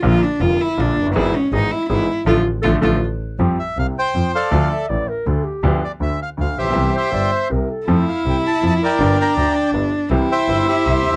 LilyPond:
<<
  \new Staff \with { instrumentName = "Bandoneon" } { \time 3/4 \key bes \lydian \tempo 4 = 161 << { r2. | r2. | r2. | \key f \major r8 e''8 f''8 g''4 f''8~ |
f''8 r2 r8 | r8 d''8 e''8 f''8 f''8 e''8~ | e''8 g''4 r4. | r8 f''8 g''8 a''8 a''8 g''8~ |
g''8 bes''4 r4. | r8 g''4 e''4. | } \\ { r2. | r2. | r2. | r4. c''4 <a' d''>8~ |
<a' d''>4 r2 | r2 r8 <g' c''>8~ | <g' c''>8 <c'' e''>4. r4 | r2 r8 <bes' d''>8~ |
<bes' d''>8 <d'' g''>4. r4 | r8 <c'' e''>4 <g' c''>4. | } >> }
  \new Staff \with { instrumentName = "Clarinet" } { \time 3/4 \key bes \lydian r2. | r2. | a'8 r8 a'8 a'8 r4 | \key f \major r2. |
r8 e''8 d''8 bes'8 a'8 g'8~ | g'16 r2 r8. | r8 c''8 d''8 c''8 bes'8 a'8~ | a'16 r2 r8. |
r2. | r2. | }
  \new Staff \with { instrumentName = "Cello" } { \time 3/4 \key bes \lydian f'8 d'8 f'8 e'8 d'8. r16 | e'8 cis'8 ees'8 e'8 e'4 | f'8 r8 f'8 f'8 r4 | \key f \major r2. |
r2. | r2. | r2. | e'2. |
d'2. | e'2. | }
  \new Staff \with { instrumentName = "Grand piano" } { \clef bass \time 3/4 \key bes \lydian <bes,, bes, d f bes f'>8 r8 <f,, f, d f bes f'>8 r8 <bes,, bes, d f bes f'>8 r32 f,,32 fis,,32 g,,32 | <gis,, gis, e gis b gis'>8 r8 <gis,, gis, e gis b gis'>8 r8 <gis,, gis, e gis b gis'>8 r8 | <d f a>8 r8 <d f a>8 <d f a>8 r4 | \key f \major <f, f g c' g'>8 r8 <c, c>8 r8 <f, f>8 r8 |
<d, d f a d' a'>8 r8 <a,, a,>8 r8 <d, d>8 r8 | <d, d f b d' g'>8 r8 <d, d>8 r8 <d, d>8 r32 a,,32 bes,,32 b,,32 | <c, c e g c' g'>8 r8 <g,, g,>8 r8 <c, c>8 r8 | <f, f a c' a'>8 r8 <c, c>8 r8 <f, f>8 r8 |
<g,, g, d g bes g'>8 r8 <d, d>8 r8 <g,, g,>8 r8 | <c, c e g c' g'>8 r8 <g,, g,>8 r8 <c, c>8 r32 d,32 r16 | }
  \new Staff \with { instrumentName = "Double bass" } { \clef bass \time 3/4 \key bes \lydian bes,,8 r8 f,,8 r8 bes,,8 fis,,8 | gis,,8 r8 gis,,8 r8 gis,,8 r8 | a,,8 r8 a,,8 a,,8 r4 | \key f \major f,8 r8 c,8 r8 f,8 r8 |
d,8 r8 a,,8 r8 d,8 r8 | d,8 r8 d,8 r8 d,8 bes,,8 | c,8 r8 g,,8 r8 c,8 r8 | f,8 r8 c,8 r8 f,8 r8 |
g,,8 r8 d,8 r8 g,,8 r8 | c,8 r8 g,,8 r8 c,8 ees,8 | }
>>